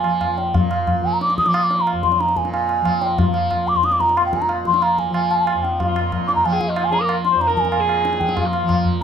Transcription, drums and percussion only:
0.04 tabla na medium
0.21 tabla na medium
0.21 tabla ge medium
0.38 tabla te medium
0.54 tabla tin loud
0.54 tabla ge loud
0.71 tabla na medium
0.87 tabla na medium
0.87 tabla ge medium
1.05 tabla ge medium
1.21 tabla te medium
1.30 tabla te medium
1.38 tabla ke medium
1.46 tabla te medium
1.54 tabla na medium
1.71 tabla te medium
1.87 tabla na medium
2.03 tabla ke medium
2.12 tabla te medium
2.20 tabla te medium
2.29 tabla te medium
2.36 tabla ke medium
2.45 tabla te medium
2.54 tabla na medium
2.69 tabla na medium
2.85 tabla na loud
2.85 tabla ge medium
3.02 tabla te medium
3.19 tabla tin loud
3.19 tabla ge loud
3.34 tabla na medium
3.51 tabla na medium
3.51 tabla ge medium
3.67 tabla ge medium
3.83 tabla te medium
3.92 tabla te medium
4.00 tabla ke medium
4.09 tabla te medium
4.17 tabla na medium
4.33 tabla ke medium
4.42 tabla te medium
4.49 tabla na medium
4.65 tabla ke medium
4.74 tabla te medium
4.82 tabla na medium
4.98 tabla ke medium
5.14 tabla na medium
5.31 tabla na medium
5.47 tabla na medium
5.64 tabla te medium
5.80 tabla tin loud
5.80 tabla ge loud
5.96 tabla na medium
6.12 tabla na medium
6.12 tabla ge medium
6.29 tabla te medium
6.37 tabla ge medium
6.46 tabla na medium
6.61 tabla ke medium
6.76 tabla na medium
6.93 tabla te medium
7.09 tabla na medium
7.25 tabla te medium
7.41 tabla te medium
7.50 tabla te medium
7.57 tabla ke medium
7.65 tabla te medium
7.72 tabla na medium
7.89 tabla na medium
8.05 tabla te medium
8.13 tabla te medium
8.21 tabla ke medium
8.29 tabla te medium
8.37 tabla tin loud
8.37 tabla ge loud
8.53 tabla na medium
8.69 tabla na medium
8.69 tabla ge medium
8.85 tabla ge medium

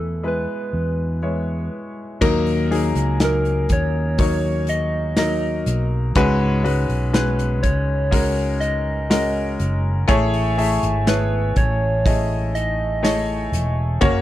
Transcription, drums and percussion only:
2.22 kick loud
2.22 crash medium
2.46 open hi-hat soft
2.71 hi-hat pedal medium
2.71 open hi-hat medium
2.95 hi-hat pedal medium
2.95 open hi-hat soft
3.20 snare loud
3.20 hi-hat pedal medium
3.20 open hi-hat medium
3.45 hi-hat pedal medium
3.69 kick medium
3.69 hi-hat pedal medium
3.69 open hi-hat medium
4.18 kick medium
4.18 hi-hat pedal medium
4.18 open hi-hat medium
4.67 hi-hat pedal medium
4.67 open hi-hat medium
5.16 snare medium
5.16 hi-hat pedal medium
5.16 open hi-hat medium
5.66 hi-hat pedal medium
5.66 open hi-hat medium
6.15 kick loud
6.15 hi-hat pedal medium
6.15 open hi-hat medium
6.65 hi-hat pedal medium
6.65 open hi-hat medium
6.90 open hi-hat soft
7.14 snare loud
7.14 hi-hat pedal medium
7.14 open hi-hat medium
7.39 hi-hat pedal medium
7.63 kick medium
7.63 hi-hat pedal medium
7.63 open hi-hat medium
8.12 kick medium
8.12 hi-hat pedal medium
8.12 open hi-hat loud
8.61 hi-hat pedal medium
8.61 open hi-hat medium
9.10 snare loud
9.10 hi-hat pedal medium
9.10 open hi-hat medium
9.60 hi-hat pedal medium
9.60 open hi-hat medium
10.09 kick loud
10.09 hi-hat pedal medium
10.09 open hi-hat medium
10.34 open hi-hat medium
10.58 hi-hat pedal medium
10.58 open hi-hat medium
10.82 hi-hat pedal medium
11.07 snare loud
11.07 hi-hat pedal medium
11.07 open hi-hat medium
11.56 kick medium
11.56 hi-hat pedal medium
11.56 open hi-hat medium
12.06 kick medium
12.06 hi-hat pedal medium
12.06 open hi-hat medium
12.55 hi-hat pedal medium
12.55 open hi-hat medium
13.04 snare medium
13.04 hi-hat pedal medium
13.04 open hi-hat medium
13.53 hi-hat pedal medium
13.53 open hi-hat medium
14.01 kick loud
14.01 hi-hat pedal medium
14.01 open hi-hat medium

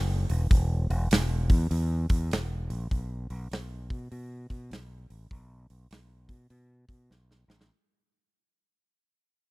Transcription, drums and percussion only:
0.30 open hi-hat medium
0.51 kick loud
0.51 open hi-hat medium
0.91 open hi-hat soft
1.11 snare loud
1.11 open hi-hat medium
1.50 kick medium
1.50 open hi-hat medium
1.71 open hi-hat medium
2.10 kick medium
2.10 open hi-hat medium
2.31 snare loud
2.31 open hi-hat medium
2.70 open hi-hat medium
2.91 kick medium
2.91 open hi-hat medium
3.30 open hi-hat medium
3.52 snare loud
3.52 open hi-hat medium
3.90 kick loud
3.90 open hi-hat medium
4.12 open hi-hat medium
4.50 kick medium
4.50 open hi-hat medium
4.71 snare loud
4.71 open hi-hat medium
5.10 open hi-hat medium
5.31 kick loud
5.31 open hi-hat medium
5.70 open hi-hat medium
5.91 snare loud
5.91 open hi-hat medium
6.29 kick medium
6.29 open hi-hat medium
6.50 open hi-hat medium
6.89 kick medium
6.89 open hi-hat medium
7.11 snare medium
7.31 snare medium
7.50 snare loud
7.61 snare medium

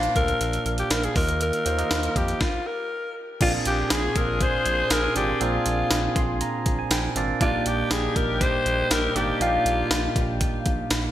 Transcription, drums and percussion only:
0.03 closed hi-hat medium
0.16 kick medium
0.16 closed hi-hat medium
0.28 closed hi-hat soft
0.41 closed hi-hat medium
0.53 closed hi-hat medium
0.66 closed hi-hat medium
0.78 closed hi-hat medium
0.91 snare loud
0.91 closed hi-hat loud
0.91 tambourine medium
1.03 closed hi-hat medium
1.16 kick loud
1.16 open hi-hat medium
1.28 closed hi-hat medium
1.41 closed hi-hat medium
1.53 closed hi-hat medium
1.66 closed hi-hat loud
1.79 closed hi-hat medium
1.91 snare loud
1.91 closed hi-hat medium
1.91 tambourine medium
2.03 closed hi-hat medium
2.16 kick loud
2.16 closed hi-hat medium
2.28 closed hi-hat medium
2.41 kick loud
2.41 snare medium
3.41 kick loud
3.41 closed hi-hat medium
3.41 crash medium
3.65 closed hi-hat medium
3.90 snare loud
3.90 closed hi-hat loud
3.90 tambourine medium
4.16 kick loud
4.16 closed hi-hat medium
4.41 kick loud
4.41 closed hi-hat medium
4.66 closed hi-hat medium
4.90 snare loud
4.90 closed hi-hat loud
4.90 tambourine medium
5.16 closed hi-hat medium
5.41 closed hi-hat medium
5.66 closed hi-hat medium
5.91 snare loud
5.91 closed hi-hat medium
5.91 tambourine medium
6.16 kick loud
6.16 closed hi-hat medium
6.41 closed hi-hat loud
6.66 kick loud
6.66 closed hi-hat medium
6.91 snare loud
6.91 closed hi-hat loud
6.91 tambourine medium
7.16 closed hi-hat medium
7.41 kick loud
7.41 closed hi-hat medium
7.66 closed hi-hat loud
7.91 snare loud
7.91 closed hi-hat loud
7.91 tambourine medium
8.16 kick loud
8.16 closed hi-hat medium
8.41 kick loud
8.41 closed hi-hat loud
8.66 closed hi-hat medium
8.91 snare loud
8.91 closed hi-hat loud
8.91 tambourine medium
9.16 closed hi-hat medium
9.41 closed hi-hat medium
9.66 closed hi-hat medium
9.91 snare loud
9.91 closed hi-hat medium
9.91 tambourine medium
10.16 kick loud
10.16 closed hi-hat medium
10.41 kick medium
10.41 closed hi-hat loud
10.66 kick loud
10.66 closed hi-hat medium
10.90 snare loud
10.90 closed hi-hat loud
10.90 tambourine medium

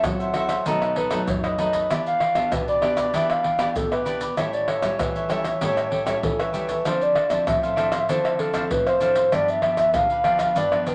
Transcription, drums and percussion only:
0.04 pandeiro medium
0.04 tamborim medium
0.04 maracas medium
0.04 surdo loud
0.20 pandeiro soft
0.20 maracas soft
0.34 pandeiro medium
0.34 tamborim medium
0.34 maracas medium
0.49 pandeiro medium
0.49 tamborim medium
0.49 maracas medium
0.49 surdo soft
0.66 pandeiro medium
0.66 maracas medium
0.66 surdo medium
0.82 pandeiro soft
0.82 tamborim medium
0.82 maracas soft
0.96 pandeiro medium
0.96 surdo soft
1.11 pandeiro medium
1.11 tamborim medium
1.11 maracas medium
1.11 surdo soft
1.28 pandeiro medium
1.28 maracas medium
1.28 surdo medium
1.44 pandeiro soft
1.44 tamborim medium
1.44 maracas soft
1.58 pandeiro medium
1.58 maracas medium
1.73 pandeiro medium
1.73 maracas medium
1.73 surdo soft
1.91 pandeiro medium
1.91 tamborim medium
1.91 maracas medium
1.91 surdo medium
2.06 pandeiro soft
2.06 maracas soft
2.20 pandeiro soft
2.20 tamborim medium
2.35 pandeiro medium
2.35 tamborim medium
2.35 maracas medium
2.35 surdo soft
2.52 pandeiro medium
2.52 tamborim medium
2.52 maracas medium
2.52 surdo medium
2.68 pandeiro soft
2.68 maracas soft
2.82 pandeiro medium
2.82 tamborim medium
2.97 pandeiro medium
2.97 tamborim medium
2.97 maracas medium
2.97 surdo soft
3.14 pandeiro medium
3.14 maracas medium
3.14 surdo medium
3.30 pandeiro soft
3.30 tamborim medium
3.30 maracas soft
3.44 pandeiro medium
3.44 surdo soft
3.59 pandeiro medium
3.59 tamborim medium
3.59 maracas medium
3.59 surdo soft
3.76 pandeiro medium
3.76 maracas medium
3.76 surdo loud
3.92 pandeiro soft
3.92 tamborim medium
3.92 maracas soft
4.06 pandeiro medium
4.06 maracas medium
4.21 pandeiro medium
4.21 maracas medium
4.21 surdo soft
4.37 pandeiro medium
4.37 tamborim medium
4.37 maracas medium
4.37 surdo medium
4.53 pandeiro soft
4.53 maracas soft
4.68 pandeiro medium
4.68 tamborim medium
4.82 pandeiro medium
4.82 tamborim medium
4.82 maracas medium
4.82 surdo soft
4.99 pandeiro medium
4.99 tamborim medium
4.99 maracas medium
4.99 surdo medium
5.16 pandeiro soft
5.16 maracas soft
5.30 pandeiro medium
5.30 tamborim medium
5.30 maracas medium
5.44 pandeiro medium
5.44 tamborim medium
5.44 maracas medium
5.44 surdo soft
5.61 pandeiro medium
5.61 maracas medium
5.61 surdo medium
5.77 pandeiro soft
5.77 tamborim medium
5.77 maracas soft
5.92 pandeiro medium
5.92 surdo soft
6.07 pandeiro medium
6.07 tamborim medium
6.07 maracas medium
6.07 surdo soft
6.23 pandeiro medium
6.23 maracas medium
6.23 surdo medium
6.40 pandeiro soft
6.40 tamborim medium
6.40 maracas soft
6.54 pandeiro medium
6.54 maracas medium
6.69 pandeiro medium
6.69 maracas medium
6.69 surdo soft
6.85 pandeiro medium
6.85 tamborim medium
6.85 maracas medium
6.85 surdo medium
7.01 pandeiro soft
7.01 maracas soft
7.15 pandeiro medium
7.15 tamborim medium
7.30 pandeiro medium
7.30 tamborim medium
7.30 maracas medium
7.30 surdo soft
7.47 pandeiro medium
7.47 tamborim medium
7.47 maracas medium
7.47 surdo loud
7.63 pandeiro soft
7.63 maracas soft
7.77 pandeiro medium
7.77 tamborim medium
7.77 maracas medium
7.92 pandeiro medium
7.92 tamborim medium
7.92 maracas medium
7.92 surdo soft
8.09 pandeiro medium
8.09 maracas medium
8.09 surdo medium
8.25 pandeiro soft
8.25 tamborim medium
8.25 maracas soft
8.39 pandeiro medium
8.54 pandeiro medium
8.54 tamborim medium
8.54 maracas medium
8.54 surdo soft
8.71 pandeiro medium
8.71 maracas medium
8.71 surdo medium
8.87 pandeiro soft
8.87 tamborim medium
8.87 maracas soft
9.01 pandeiro medium
9.01 maracas medium
9.15 pandeiro medium
9.15 maracas medium
9.15 surdo soft
9.32 pandeiro medium
9.32 tamborim medium
9.32 maracas medium
9.32 surdo medium
9.48 pandeiro soft
9.48 maracas soft
9.62 pandeiro soft
9.62 tamborim medium
9.77 pandeiro medium
9.77 tamborim medium
9.77 maracas medium
9.77 surdo soft
9.94 pandeiro medium
9.94 tamborim medium
9.94 maracas medium
9.94 surdo loud
10.10 pandeiro soft
10.10 maracas soft
10.24 pandeiro medium
10.24 tamborim medium
10.39 pandeiro medium
10.39 tamborim medium
10.39 maracas medium
10.39 surdo soft
10.56 pandeiro medium
10.56 maracas medium
10.56 surdo medium
10.72 pandeiro soft
10.72 tamborim medium
10.72 maracas soft
10.87 pandeiro medium
10.87 maracas medium
10.87 surdo soft

